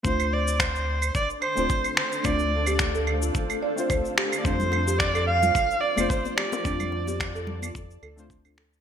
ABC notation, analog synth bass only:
X:1
M:4/4
L:1/16
Q:"Swing 16ths" 1/4=109
K:Dm
V:1 name="Analog synth bass" clef=bass
D,,8 z3 D,,, z4 | D,,8 z4 D,, z3 | F,,8 z3 F,,, z4 | F,,8 F,,2 D,,6 |]